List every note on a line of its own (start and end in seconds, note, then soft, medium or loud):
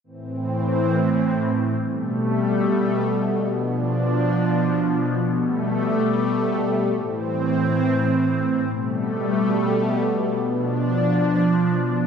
0.04 1.75 A2 medium
0.04 1.75 E3 medium
0.04 1.75 C4 medium
1.77 6.91 B2 medium
1.77 3.48 G3 medium
1.77 3.48 A3 medium
3.49 5.20 F3 medium
3.49 5.20 D4 medium
5.22 6.93 G3 medium
5.22 6.93 A3 medium
6.94 8.65 A2 medium
6.94 8.65 E3 medium
6.94 8.65 C4 medium
8.67 12.07 B2 medium
8.67 10.38 G3 medium
8.67 10.38 A3 medium
10.40 12.07 F3 medium
10.40 12.07 D4 medium